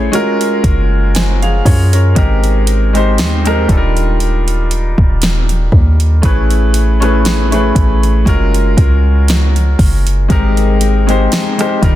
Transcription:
Already playing: A3 C#4 E4 G#4 B4 C5 C#5
0.12 G#3 C#4 F4 F#4 A#4, closed hi-hat
0.41 closed hi-hat
0.64 F#1, kick, closed hi-hat
1.15 C5 G#5, snare, closed hi-hat
1.42 G#4 F5, closed hi-hat
1.65 F#2 F4 C#5, kick, open hi-hat
1.93 C#4 A#4, closed hi-hat
2.15 G#1 G#3 C4 D#4 G4 A#4, kick, closed hi-hat
2.44 closed hi-hat
2.67 closed hi-hat
2.93 G#3 C4 D#4 G4 C5, closed hi-hat
3.18 D#2, snare, closed hi-hat
3.44 G#3 C4 D#4 G4 A#4, cross-stick, closed hi-hat
3.67 D#1 G3 D4 D#4 F4 A4, kick, closed hi-hat
3.77 A#4
3.97 closed hi-hat
4.20 closed hi-hat
4.48 closed hi-hat
4.71 closed hi-hat
4.98 D#1, kick
5.22 snare, closed hi-hat
5.49 closed hi-hat
5.72 D#2, kick
6.00 closed hi-hat
6.22 A1 A3 C#4 E4 G#4 B4, kick, closed hi-hat
6.50 closed hi-hat
6.74 closed hi-hat
7.00 A3 C#4 E4 G#4 B4, cross-stick, closed hi-hat
7.25 snare, closed hi-hat
7.51 A3 C#4 E4 G#4 B4, closed hi-hat
7.75 A1, kick, closed hi-hat
8.03 closed hi-hat
8.25 F#1 G#3 C#4 F4 F#4 A#4, kick, closed hi-hat
8.54 closed hi-hat
8.77 C#2, kick, closed hi-hat
9.28 snare, closed hi-hat
9.56 closed hi-hat
9.79 F#1, kick, open hi-hat
10.07 closed hi-hat
10.28 G#1 G#3 C4 D#4 G4 A#4, kick, closed hi-hat
10.57 closed hi-hat
10.81 C4, closed hi-hat
11.07 G#3 C4 D#4 G4 C5, closed hi-hat
11.32 snare, closed hi-hat
11.58 G#3 C4 D#4 G4 C5, cross-stick, closed hi-hat
11.81 D#1 D#3 G3 D4 D#4 F4 A#4, kick, closed hi-hat

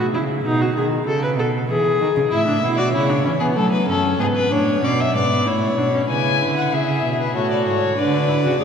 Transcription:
Already playing: A2
0.14 C#3 E4
0.45 B2 D#4
0.61 F#4
0.77 D#3 G#4
1.07 C#3 A4
1.23 B4
1.38 B2 A4
1.70 E3 G#4
2.01 D#3
2.17 C#3
2.31 A2 E4 E5
2.47 D4
2.62 B2 E4
2.78 F#4 D5
2.93 C#3 E4 C#5
3.10 D4
3.25 E3 C#4
3.40 B3 G#4
3.56 F#3 A3 A4
3.72 B4
3.88 F#2 C#4 A4
4.19 G#2 B3 G#4
4.36 B4
4.51 A2 D4 C#5
4.83 B2 C#4 D5
5.01 E5
5.15 G#2 B3 D5
5.46 A2 E4 C#5
5.78 B2 D4
5.93 C#4
6.09 C#3 E4 B4 G#5
6.41 D3
6.57 F#5
6.73 C#3 G#4 E5
7.05 B2
7.20 B4
7.36 A2 F#4 A4 C#5
7.51 D5
7.67 G#2 C#5
7.97 D3 D4 B4 D5
8.29 E4
8.44 C#3 F#4
8.60 B2 G#4

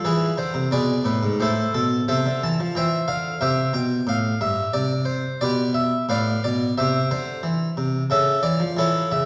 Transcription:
0.05 E3 E4 G#4 B4
0.38 D3 C5
0.54 C3
0.71 B2 G#4 B4 D5
1.04 A2 B4
1.23 G#2
1.40 A2 E4 A4 C5
1.74 B2 A4
2.08 C3 A4 C5 E5
2.26 D3
2.43 E3 A5
2.60 F3
2.75 E3 C5 E5 G5
3.08 D3 F5
3.41 C3 G4 C5 E5
3.73 B2 G5
4.07 A2 F5
4.41 G2 E5
4.73 C3 D5
5.05 C5
5.41 B2 G4 B4 D5
5.74 E5
6.09 A2 B4 D5 F5
6.44 B2 D5
6.78 C3 G4 C5 E5
7.11 D3 C5
7.43 E3
7.77 C3
8.10 C#3 A4 C#5 E5
8.43 E3 D5
8.60 F3
8.77 E3 E4 A4 C#5
9.12 C#3 E5

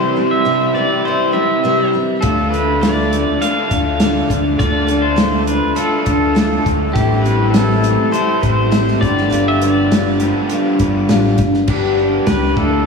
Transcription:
Already playing: C3 E3 G3 C4 E4 B4 C5
0.16 G3 C4 E4 B4
0.31 E5
0.45 C3 E3 G3 C4 E4 B4
0.74 C3 E3 G3 C4 E4 B4 D5
1.05 G3 C4 E4 B4 C5
1.32 G3 C4 E4 B4 E5
1.64 C3 E3 G3 C4 E4 B4
1.93 G3 C4 E4 B4
2.21 D2 D3 A3 D4 F4 A4, kick, closed hi-hat
2.51 F4 A4 B4, closed hi-hat
2.55 D4
2.81 D3 A3 D4 F4 A4 D5, snare, closed hi-hat
3.12 D4 F4 A4, closed hi-hat
3.39 D3 A3 D4 F4 A4 F5, closed hi-hat
3.70 D2 D4 F4 A4, kick, closed hi-hat
4.00 D3 A3 D4 F4 A4, snare, closed hi-hat
4.29 D2 D4 F4 A4, kick, closed hi-hat
4.59 D2 D3 A3 D4 F4 A4 D5, kick, closed hi-hat
4.87 D4 F4 A4, closed hi-hat
5.02 C5
5.16 D3 A3 D4 F4 A4, snare, closed hi-hat
5.46 D4 F4 A4 B4, closed hi-hat
5.75 D3 A3 D4 F4 A4, closed hi-hat
6.06 D2 D4 F4 A4, kick, closed hi-hat
6.35 D3 A3 D4 F4 A4, snare, closed hi-hat
6.63 D2 D4 F4 A4, kick, closed hi-hat
6.93 A1 A2 E3 G3 A3 C4 E4 G4 A4, kick, closed hi-hat
7.22 E4 A4 B4, closed hi-hat
7.26 G3 C4
7.51 A2 E3 G3 C4 A4, snare, closed hi-hat
7.55 E4 A4
7.81 G3 C4 E4 A4, closed hi-hat
8.11 A2 E3 G3 C4 E4 A4 C5, closed hi-hat
8.16 A3
8.40 A1 G3 C4 E4 A4 C5, kick, closed hi-hat
8.71 A2 E3 G3 C4 E4 A4, snare, closed hi-hat
8.88 snare
9.00 G1 G2 D3 F3 G3 B3 D4 F4 G4 B4 D5, kick, closed hi-hat
9.18 snare
9.30 G1 G3 D4 F4 B4, closed hi-hat
9.48 E5
9.61 D4 F4 B4 D5, closed hi-hat
9.91 G3 D4 F4 B4, snare, closed hi-hat
10.20 G2 D3 F3 G3 B3 D4 F4 G4 B4, closed hi-hat
10.49 G3 D4 F4, closed hi-hat
10.54 B4
10.79 G1 D4 F4 B4, kick, closed hi-hat
11.09 A1 G3 D4 F4 B4, snare, closed hi-hat
11.38 G1 F4 B4, kick, closed hi-hat
11.43 D4
11.54 snare
11.67 G1 G3 B3 D4 G4 B4 D5 G5 D6, kick, crash
11.98 D4 G4 B4
12.27 C#2 G3 D4 G4 B4, kick, snare, closed hi-hat
12.55 D2 D3 A3 D4 E4 F4 A4 E5 F5, kick

